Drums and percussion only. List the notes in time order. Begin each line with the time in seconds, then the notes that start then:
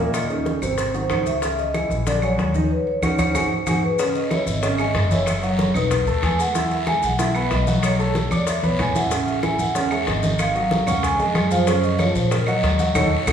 0.14 high bongo, high conga, claves, maracas
0.30 high bongo, maracas
0.46 high bongo, high conga, maracas
0.62 high bongo, high conga, claves, maracas
0.78 high bongo, high conga, maracas
0.94 high conga, maracas
1.10 high bongo, low bongo, high conga, claves, maracas
1.26 high bongo, high conga, maracas
1.42 high bongo, high conga, maracas
1.58 high bongo, high conga, maracas
1.74 high bongo, high conga, claves, maracas
1.90 high bongo, high conga, maracas
2.07 high bongo, high conga, maracas
2.22 high conga, claves, maracas
2.39 high bongo, low bongo, high conga, maracas
2.54 high bongo, high conga, maracas
3.03 high bongo, high conga, claves, maracas
3.19 high bongo, high conga, claves, maracas
3.35 high bongo, high conga, claves, maracas
3.67 high bongo, high conga, claves, maracas
3.99 high bongo, high conga, long guiro, maracas
4.15 high bongo, high conga, maracas
4.31 high bongo, high conga, short guiro, claves, maracas
4.47 high bongo, high conga, short guiro, maracas
4.63 high bongo, high conga, long guiro, maracas
4.78 high conga, claves, maracas
4.95 high bongo, low bongo, high conga, short guiro, maracas
5.11 high bongo, high conga, short guiro, maracas
5.26 high bongo, high conga, long guiro, claves, maracas
5.43 high bongo, maracas
5.59 high bongo, high conga, short guiro, maracas
5.74 high bongo, high conga, low conga, short guiro, claves, maracas
5.91 high bongo, high conga, low conga, maracas
6.07 high conga, maracas
6.22 high bongo, low bongo, high conga, short guiro, claves, maracas
6.39 high bongo, high conga, short guiro, maracas
6.55 high bongo, high conga, long guiro, maracas
6.71 high bongo, high conga, maracas
6.87 high bongo, high conga, short guiro, claves, maracas
7.03 high bongo, high conga, short guiro, maracas
7.19 high bongo, high conga, long guiro, maracas
7.35 high conga, claves, maracas
7.51 high bongo, low bongo, high conga, short guiro, maracas
7.67 high bongo, high conga, short guiro, maracas
7.83 high bongo, high conga, long guiro, claves, maracas
7.99 high bongo, high conga, maracas
8.15 high bongo, high conga, short guiro, maracas
8.31 high bongo, high conga, short guiro, claves, maracas
8.47 high bongo, long guiro, maracas
8.63 high conga, maracas
8.79 high bongo, low bongo, low conga, short guiro, claves, maracas
8.95 high bongo, low conga, short guiro, maracas
9.11 high bongo, high conga, long guiro, maracas
9.27 high bongo, high conga, maracas
9.43 high bongo, high conga, short guiro, claves, maracas
9.59 high bongo, high conga, short guiro, maracas
9.75 high bongo, high conga, long guiro, maracas
9.91 high conga, claves, maracas
10.07 high bongo, low bongo, high conga, short guiro, maracas
10.23 high bongo, high conga, short guiro, maracas
10.39 high bongo, high conga, long guiro, claves, maracas
10.55 high bongo, high conga, maracas
10.71 high bongo, high conga, short guiro, maracas
10.87 high bongo, high conga, low conga, short guiro, claves, maracas
11.03 high bongo, high conga, long guiro, maracas
11.19 high conga, maracas
11.35 high bongo, low bongo, high conga, short guiro, claves, maracas
11.51 high bongo, high conga, short guiro, maracas
11.67 high bongo, high conga, long guiro, maracas
11.83 high bongo, high conga, maracas
11.99 high bongo, high conga, short guiro, claves, maracas
12.15 high bongo, high conga, short guiro, maracas
12.31 high bongo, high conga, long guiro, maracas
12.47 high conga, claves, maracas
12.63 high bongo, low bongo, high conga, short guiro, maracas
12.79 high bongo, high conga, short guiro, maracas
12.95 high bongo, low conga, long guiro, claves, maracas
13.27 high bongo, low conga, long guiro, claves, maracas